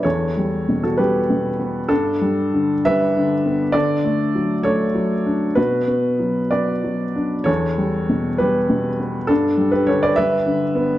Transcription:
<<
  \new Staff \with { instrumentName = "Upright piano" } { \time 6/8 \key e \dorian \tempo 4. = 65 <a' cis''>4~ <a' cis''>16 <fis' a'>16 <g' b'>4. | <d' a'>4. <b' e''>4. | <a' d''>4. <a' cis''>4. | <fis' b'>4. <b' d''>4. |
<a' cis''>4. <g' b'>4. | <d' a'>8. <g' b'>16 <a' cis''>16 <b' d''>16 <b' e''>4. | }
  \new Staff \with { instrumentName = "Upright piano" } { \clef bass \time 6/8 \key e \dorian e,8 g8 b,8 g8 b,8 b8 | g,8 g8 d8 g8 d8 b8 | d8 a8 fis8 a8 fis8 d'8 | b,8 b8 fis8 b8 fis8 d'8 |
e,8 g8 b,8 g8 b,8 b8 | g,8 g8 d8 g8 d8 b8 | }
>>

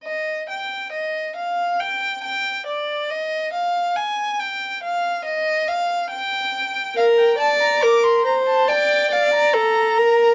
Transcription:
<<
  \new Staff \with { instrumentName = "Violin" } { \time 4/4 \key bes \mixolydian \tempo 4 = 69 ees''8 g''8 ees''8 f''8 g''8 g''8 d''8 ees''8 | f''8 aes''8 g''8 f''8 ees''8 f''8 g''4 | f''16 g''16 a''16 bes''16 d'''16 c'''16 bes''16 a''16 g''8 f''16 bes''4~ bes''16 | }
  \new Staff \with { instrumentName = "Violin" } { \time 4/4 \key bes \mixolydian r1 | r1 | bes'8 d''8 bes'8 c''8 d''8 d''8 a'8 bes'8 | }
>>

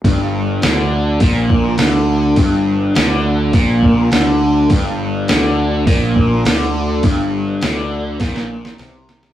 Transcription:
<<
  \new Staff \with { instrumentName = "Overdriven electric guitar" } { \clef bass \time 4/4 \key c \major \tempo 4 = 103 g,4 d4 bes,4 d4 | g,4 d4 bes,4 d4 | g,4 d4 bes,4 d4 | g,4 d4 bes,4 c4 | }
  \new Staff \with { instrumentName = "Fingered electric bass" } { \clef bass \time 4/4 \key c \major g,,4 d,4 bes,,4 d,4 | g,,4 d,4 bes,,4 d,4 | g,,4 d,4 bes,,4 d,4 | g,,4 d,4 bes,,4 c,4 | }
  \new DrumStaff \with { instrumentName = "Drums" } \drummode { \time 4/4 <hho bd>4 <hho sn>4 <hho bd>8 bd8 <hho sn>4 | <hho bd>4 <hho sn>4 <hho bd>8 bd8 <hho sn>4 | <hho bd>4 <hho sn>4 <hho bd>8 bd8 <hho sn>4 | <hho bd>4 <hho sn>4 <hho bd sn>16 sn8 sn16 <hho sn>8 sn16 sn16 | }
>>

